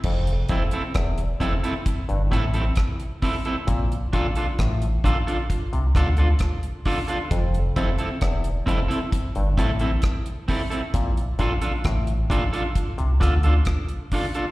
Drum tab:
CC |x---------------|----------------|----------------|----------------|
HH |-xxxxxxxxxxxxxox|xxxxxxxxxxxxxxox|xxxxxxxxxxxxxxox|xxxxxxxxxxxxxxox|
SD |----r-------r---|----r-----r-r---|----r-------r---|----r-----r-r---|
BD |o-o-o-o-o-o-o-o-|o-o-o-o-o-o-o-o-|o-o-o-o-o-o-o-o-|o-o-o-o-o-o-o-o-|